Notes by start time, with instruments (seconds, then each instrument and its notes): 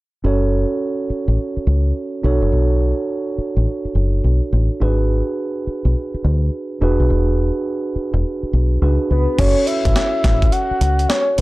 0.24 fingered electric bass F#1, tine electric piano C#4 F#4 A4 C#5
1.10 muted fingered electric bass stroke
1.28 fingered electric bass A1
1.57 muted fingered electric bass stroke
1.67 fingered electric bass C#2
2.23 fingered electric bass B1, tine electric piano D4 F#4 A4 C#5
2.42 fingered electric bass F#1
2.52 fingered electric bass B1
3.38 muted fingered electric bass stroke
3.57 fingered electric bass A1
3.85 muted fingered electric bass stroke
3.95 fingered electric bass F#1
4.24 fingered electric bass B1
4.53 fingered electric bass A1
4.80 fingered electric bass G#1, tine electric piano D4 F#4 G#4 B4
5.67 muted fingered electric bass stroke
5.85 fingered electric bass B1
6.14 muted fingered electric bass stroke
6.25 fingered electric bass D2
6.81 fingered electric bass E1, tine electric piano D4 F#4 G#4 B4
7.00 fingered electric bass B1
7.10 fingered electric bass E1
7.96 muted fingered electric bass stroke
8.14 fingered electric bass E1
8.43 muted fingered electric bass stroke
8.53 fingered electric bass B1
8.82 fingered electric bass C#2, tine electric piano D4 F#4 G#4 B4
9.11 fingered electric bass C#2, soft synth lead B4
9.38 fingered electric bass F#1, tine electric piano C#4 F#4 A4 C#5, soft synth lead C#5, kick, closed hi-hat, crash
9.66 soft synth lead E5, closed hi-hat
9.85 fingered electric bass A1, kick, closed hi-hat
9.96 snare, closed hi-hat
10.24 fingered electric bass A1, kick, snare, closed hi-hat
10.42 kick, closed hi-hat
10.52 soft synth lead F#5, closed hi-hat
10.71 muted fingered electric bass stroke
10.81 fingered electric bass C#2, closed hi-hat
10.99 closed hi-hat
11.09 soft synth lead C#5, snare, closed hi-hat
11.38 tine electric piano D4, closed hi-hat